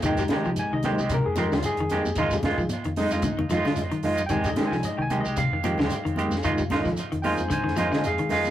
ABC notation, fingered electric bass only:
X:1
M:4/4
L:1/16
Q:"Swing 16ths" 1/4=113
K:Fdor
V:1 name="Fingered electric bass" clef=bass
F,,2 z C,, z C,,2 C,, z F,,2 E,, z F,,2 F,, | F,,3 E, z F,,2 F,, z F,, F,, z F,, z F,,2 | F,,2 z C,, z C,,2 C,, z F,,2 E,, z F,,2 F,, | F,,3 E, z F,,2 F,, z F,, F,, z F,, z F,,2 |]